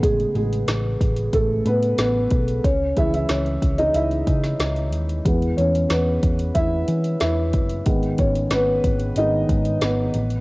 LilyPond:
<<
  \new Staff \with { instrumentName = "Felt piano" } { \time 4/4 \key gis \phrygian \tempo 4 = 92 <gis gis'>8 <gis gis'>4. <a a'>8 <b b'>8 <b b'>4 | <cis' cis''>8 <e' e''>16 <e' e''>16 <cis' cis''>8. <dis' dis''>16 <e' e''>4 r4 | r8 <cis' cis''>8 <b b'>4 <e' e''>4 <e' e''>8. r16 | r8 <cis' cis''>8 <b b'>4 <dis' dis''>4 <b b'>4 | }
  \new Staff \with { instrumentName = "Felt piano" } { \clef bass \time 4/4 \key gis \phrygian <cis a b>4 r2. | r8 <e gis cis'>8 r2. | <e gis b>8 r2. r8 | <dis gis b>2 <dis gis b>8 r4. | }
  \new Staff \with { instrumentName = "Picked electric bass" } { \clef bass \time 4/4 \key gis \phrygian a,,8 a,,8 a,,8 a,,8 a,,8 a,8 a,,8 b,,8 | cis,8 cis,8 cis,8 cis,8 cis,8 cis8 cis,8 dis,8 | e,8 e,8 e,8 e,8 e,8 e8 e,8 fis,,8 | gis,,8 gis,,8 gis,,8 gis,,8 gis,,8 gis,8 gis,,8 a,,8 | }
  \new DrumStaff \with { instrumentName = "Drums" } \drummode { \time 4/4 <hh bd>16 hh16 hh16 hh16 <hh sn>8 <hh bd>16 hh16 <hh bd>8 hh16 hh16 <hh sn>8 <hh bd>16 hh16 | <hh bd>8 <hh bd>16 hh16 <hh sn>16 hh16 <hh bd>16 hh16 hh16 hh16 <hh bd>16 <hh sn>16 <hh sn>16 hh16 hh16 hh16 | <hh bd>16 hh16 hh16 hh16 <hh sn>8 <hh bd>16 hh16 <hh bd>8 hh16 hh16 <hh sn>8 <hh bd>16 hh16 | <hh bd>16 hh16 <hh bd>16 hh16 <hh sn>8 <hh bd>16 hh16 hh8 <hh bd>16 hh16 <hh sn>8 hh16 hh16 | }
>>